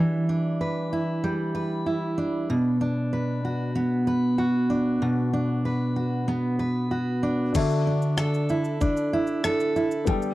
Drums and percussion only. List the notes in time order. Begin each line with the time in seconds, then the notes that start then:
7.55 kick, crash, shaker
7.71 shaker
8.02 shaker
8.18 cross-stick, shaker
8.34 shaker
8.49 shaker
8.65 shaker
8.81 kick, shaker
8.97 shaker
9.27 shaker
9.44 cross-stick, shaker
9.60 shaker
9.76 shaker
9.91 shaker
10.07 kick, shaker
10.22 shaker